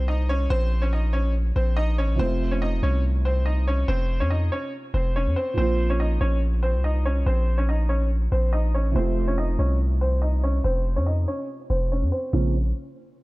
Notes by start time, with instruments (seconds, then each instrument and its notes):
Already playing: felt piano A#2 F3 A#3 C4 F4
0.00 808-style bass C2
0.08 upright piano D#4 D#5
0.29 upright piano C#4 C#5
0.50 808-style bass A#1, upright piano C4 C5
0.82 upright piano C#4 C#5
0.93 upright piano D#4 D#5
1.13 upright piano C#4 C#5
1.56 808-style bass A#1, upright piano C4 C5
1.77 upright piano D#4 D#5
1.98 808-style bass A1, upright piano C#4 C#5
2.09 808-style bass A#1
2.15 808-style bass F1, felt piano C3 F3
2.19 felt piano A3 C4, upright piano C4 C5
2.23 felt piano F4
2.51 upright piano C#4 C#5
2.62 upright piano D#4 D#5
2.83 808-style bass C2, upright piano C#4 C#5
3.25 upright piano C4 C5
3.46 upright piano D#4 D#5
3.67 upright piano C#4 C#5
3.88 808-style bass F1, upright piano C4 C5
4.20 808-style bass F2, upright piano C#4 C#5
4.30 upright piano D#4 D#5
4.52 upright piano C#4 C#5
4.94 808-style bass F1, upright piano C4 C5
5.16 upright piano C#4 C#5
5.26 808-style bass F2
5.36 upright piano C4 C5
5.54 808-style bass A#1, felt piano A#2 F3
5.58 felt piano A#3 C4, upright piano C4 C5
5.62 felt piano F4
5.90 upright piano C#4 C#5
6.00 upright piano D#4 D#5
6.21 808-style bass A#1, upright piano C#4 C#5
6.63 upright piano C4 C5
6.74 808-style bass C2
6.84 upright piano D#4 D#5
7.06 upright piano C#4 C#5
7.26 808-style bass A#1, upright piano C4 C5
7.58 upright piano C#4 C#5
7.69 upright piano D#4 D#5
7.89 upright piano C#4 C#5
8.32 808-style bass A#1, upright piano C4 C5
8.53 upright piano D#4 D#5
8.74 808-style bass A1, upright piano C#4 C#5
8.85 808-style bass A#1
8.91 808-style bass F1, felt piano C3 F3 A3
8.96 upright piano C4 C5, felt piano C4 F4
9.28 upright piano C#4 C#5
9.38 upright piano D#4 D#5
9.59 808-style bass C2, upright piano C#4 C#5
10.01 upright piano C4 C5
10.22 upright piano D#4 D#5
10.43 upright piano C#4 C#5
10.64 808-style bass F1, upright piano C4 C5
10.96 808-style bass F2, upright piano C#4 C#5
11.06 upright piano D#4 D#5
11.28 upright piano C#4 C#5
11.70 808-style bass F1, upright piano C4 C5
11.92 upright piano C#4 C#5
12.02 808-style bass F2
12.12 upright piano C4 C5
12.33 808-style bass A#1, felt piano C#3 F3 A#3 C4, upright piano C#4